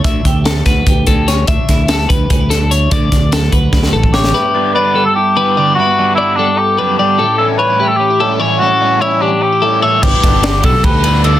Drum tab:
CC |--------------|--------------|--------------|--------------|
RD |--------------|--------------|--------------|--------------|
HH |x-x-x-x-x-x-x-|x-x-x-x-x-x-x-|x-x-x-x-------|--------------|
SD |----o-o-----o-|--o-o-----o---|--o-o---oo--oo|--------------|
BD |o-o---o-o-o---|o-o---o-o-----|o-o---o-o--o--|--------------|

CC |--------------|--------------|--------------|x-------------|
RD |--------------|--------------|--------------|--x-x-x-x-x-x-|
HH |--------------|--------------|--------------|--------------|
SD |--------------|--------------|--------------|--o-o---------|
BD |--------------|--------------|--------------|o-o---o-o-----|